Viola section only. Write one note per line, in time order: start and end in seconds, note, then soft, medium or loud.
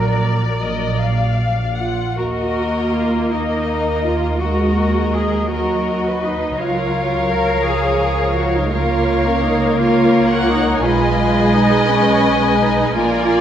0.00 1.55 F#3 medium
2.18 4.37 A#3 medium
4.41 5.51 G#3 medium
5.52 7.62 F#3 medium
7.66 8.72 F3 medium
8.72 10.85 A#3 medium
10.84 12.95 G#3 medium
12.95 13.41 A#3 medium